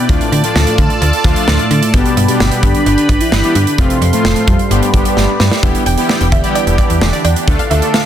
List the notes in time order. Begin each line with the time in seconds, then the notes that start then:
Already playing: B3 D5
0.09 D2 F3 A3 D4 F4 A4 A5, kick, closed hi-hat
0.21 closed hi-hat
0.32 D3, closed hi-hat
0.44 F3 A3 D4 F4, closed hi-hat
0.55 D2 A3, snare
0.67 closed hi-hat
0.78 D3, kick, closed hi-hat
0.90 closed hi-hat
1.02 D2, closed hi-hat
1.13 closed hi-hat
1.24 D2 F3 A3 D4 F4, kick, closed hi-hat
1.36 closed hi-hat
1.48 D2 A3, snare
1.59 closed hi-hat
1.71 D3, closed hi-hat
1.83 closed hi-hat
1.94 G1 G3 B3 D4 G4 B4 B5, kick, closed hi-hat
2.06 closed hi-hat
2.17 G2, closed hi-hat
2.28 G3 B3 D4 G4, closed hi-hat
2.40 G1, snare
2.52 closed hi-hat
2.63 G2 D4, kick, closed hi-hat
2.75 closed hi-hat
2.86 G1, closed hi-hat
2.98 closed hi-hat
3.09 G1, kick, closed hi-hat
3.21 E4, closed hi-hat
3.32 G1, snare
3.44 G3 B3 D4 G4, closed hi-hat
3.55 G2 D4, closed hi-hat
3.67 closed hi-hat
3.78 F1 F3 A3 C4 F4 A4 C5 F5 C6, kick, closed hi-hat
3.90 closed hi-hat
4.01 F2, closed hi-hat
4.13 F3 A3 C4 F4, closed hi-hat
4.24 F1, snare
4.36 closed hi-hat
4.48 F2 G3, kick, closed hi-hat
4.59 closed hi-hat
4.71 G1 G3 B3 D4 G4 B4 D5 B5, closed hi-hat
4.83 closed hi-hat
4.94 G1 G3 B3 D4 G4, kick, closed hi-hat
5.05 closed hi-hat
5.17 G1, snare
5.40 G2, snare
5.51 snare
5.63 E1 D3 E3 G3 B3 D4 E4 G4, kick, closed hi-hat
5.75 closed hi-hat
5.86 E1 G5, closed hi-hat
5.98 G3 B3 E4 G4, closed hi-hat
6.09 D5, snare
6.21 E1 G5, closed hi-hat
6.32 E1 D3 E5, kick, closed hi-hat
6.44 G3 B3 E4 G4 D5, closed hi-hat
6.55 D5 G5, closed hi-hat
6.67 E1, closed hi-hat
6.78 D5, kick, closed hi-hat
6.90 E2, closed hi-hat
7.01 E1 D3, snare
7.13 D5, closed hi-hat
7.24 E2 D5 G5, closed hi-hat
7.36 closed hi-hat
7.48 D2 D3 A3 D4 F4 A4, kick, closed hi-hat
7.59 F5, closed hi-hat
7.70 D2 D3 A3 D4 F4 A4 E5, closed hi-hat
7.82 closed hi-hat
7.94 F5, snare